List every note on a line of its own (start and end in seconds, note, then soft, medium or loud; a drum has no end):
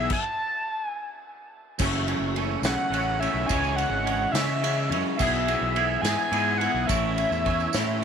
0.00 0.10 B3 medium
0.00 0.11 E5 loud
0.10 0.84 A5 loud
0.10 kick loud
0.10 crash loud
0.84 1.20 G#5 loud
1.79 2.14 F#1 loud
1.79 2.36 F#2 loud
1.79 2.34 C#3 loud
1.79 2.09 E3 loud
1.79 2.07 A3 loud
1.79 2.07 C#4 loud
1.79 kick loud
1.79 crash loud
1.79 tambourine medium
1.93 tambourine soft
2.07 2.35 E3 medium
2.07 2.36 A3 medium
2.07 2.37 C#4 medium
2.07 ride medium
2.07 tambourine soft
2.20 2.55 F#1 medium
2.35 2.91 C#3 medium
2.35 2.65 E3 medium
2.35 2.63 A3 medium
2.35 2.62 C#4 medium
2.35 ride medium
2.62 2.75 B1 medium
2.62 2.90 C#3 medium
2.62 2.92 E3 medium
2.62 2.92 A3 medium
2.62 2.93 C#4 medium
2.62 3.21 F#5 loud
2.62 snare loud
2.62 ride loud
2.62 tambourine medium
2.66 3.22 F#2 medium
2.78 tambourine soft
2.90 3.26 A1 medium
2.90 3.47 C#3 medium
2.90 3.22 E3 medium
2.90 3.20 A3 medium
2.90 ride medium
2.94 3.19 C#4 medium
3.20 3.50 E3 medium
3.20 3.48 A3 medium
3.20 3.47 C#4 medium
3.20 3.48 E5 loud
3.20 ride medium
3.34 3.46 B1 medium
3.46 3.84 C#2 loud
3.46 4.02 C#3 loud
3.46 3.79 E3 loud
3.46 3.77 G#5 loud
3.46 kick loud
3.46 tambourine loud
3.50 3.78 G#3 loud
3.50 3.76 C#4 loud
3.50 ride loud
3.64 tambourine soft
3.76 4.04 E3 medium
3.76 4.05 G#3 medium
3.76 4.05 C#4 medium
3.76 4.33 F#5 loud
3.76 ride medium
3.76 tambourine soft
3.90 4.25 G#1 medium
4.03 4.60 C#3 medium
4.03 4.35 E3 medium
4.03 4.33 G#3 medium
4.03 4.32 C#4 medium
4.03 ride medium
4.32 4.91 C#3 loud
4.32 4.61 G#3 medium
4.32 4.61 C#4 medium
4.32 4.97 E5 loud
4.32 snare loud
4.32 ride loud
4.32 tambourine medium
4.36 4.61 C#3 medium
4.36 4.61 E3 medium
4.48 tambourine soft
4.61 5.17 C#3 medium
4.61 4.91 E3 medium
4.61 4.90 G#3 medium
4.61 4.88 C#4 medium
4.61 ride medium
4.90 5.02 F#2 medium
4.90 5.18 E3 medium
4.90 5.18 G#3 medium
4.90 5.17 C#4 medium
4.90 ride medium
5.17 5.54 B1 loud
5.17 5.75 B2 medium
5.17 5.74 E3 medium
5.17 5.46 B3 loud
5.17 5.46 E4 loud
5.17 5.44 G#4 loud
5.17 6.03 E5 medium
5.17 kick medium
5.17 crash medium
5.17 tambourine medium
5.33 tambourine soft
5.45 5.75 B3 medium
5.45 5.76 E4 medium
5.45 5.76 G#4 medium
5.45 ride medium
5.45 tambourine soft
5.61 5.96 B1 medium
5.75 6.31 E3 medium
5.75 6.05 B3 medium
5.75 6.04 E4 medium
5.75 6.02 G#4 medium
5.75 ride medium
6.01 6.15 G#2 medium
6.01 6.32 E4 medium
6.01 6.32 G#4 medium
6.01 6.30 G#5 loud
6.01 snare loud
6.01 ride loud
6.01 tambourine medium
6.06 6.62 B2 medium
6.06 6.31 E3 medium
6.06 6.31 B3 medium
6.19 tambourine soft
6.31 6.67 G#2 medium
6.31 6.88 E3 medium
6.31 6.60 B3 medium
6.31 6.60 E4 medium
6.31 6.58 G#4 medium
6.31 6.59 G#5 loud
6.31 ride medium
6.57 6.88 B3 medium
6.57 6.88 E4 medium
6.57 6.87 G#4 medium
6.57 6.88 F#5 loud
6.57 ride medium
6.74 6.86 B1 medium
6.86 7.24 A1 medium
6.86 7.45 A2 loud
6.86 7.44 E3 loud
6.86 7.18 A3 loud
6.86 7.17 C#4 loud
6.86 7.15 E4 loud
6.86 8.04 E5 medium
6.86 kick loud
6.86 ride medium
6.86 tambourine loud
7.16 7.45 A3 medium
7.16 7.46 C#4 medium
7.16 7.46 E4 medium
7.16 ride medium
7.31 7.66 E2 medium
7.31 tambourine soft
7.44 8.00 E3 medium
7.44 7.74 A3 medium
7.44 7.74 C#4 medium
7.44 7.72 E4 medium
7.44 kick medium
7.44 ride medium
7.60 tambourine soft
7.73 8.04 A2 medium
7.73 8.02 E3 medium
7.73 8.01 A3 medium
7.73 8.02 C#4 medium
7.73 8.03 E4 medium
7.73 snare loud
7.73 ride medium
7.73 tambourine medium
7.77 8.04 A2 medium
8.00 8.04 E3 medium